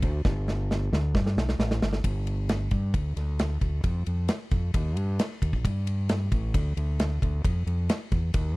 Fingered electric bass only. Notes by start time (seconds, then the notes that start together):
0.03 D2
0.25 G1
0.92 D2
1.15 G2
1.37 B1
1.59 A1
1.82 G1
2.04 G1
2.71 G2
2.94 D2
3.17 D2
3.62 D2
3.84 F2
4.07 F2
4.52 F2
4.74 D#2
4.97 G2
5.42 D#2
5.53 A#1
5.64 G2
6.32 A1
6.54 D2
6.77 D2
7.22 D2
7.45 F2
7.66 F2
8.12 E2
8.34 D#2